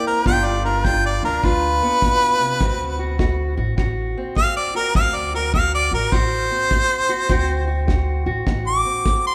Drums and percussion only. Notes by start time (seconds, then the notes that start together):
0.26 kick
0.85 kick
1.44 kick
2.02 kick
2.61 kick
3.19 kick
3.78 kick
4.36 kick
4.95 kick
5.54 kick
6.12 kick
6.71 kick
7.29 kick
7.88 kick
8.47 kick
9.06 kick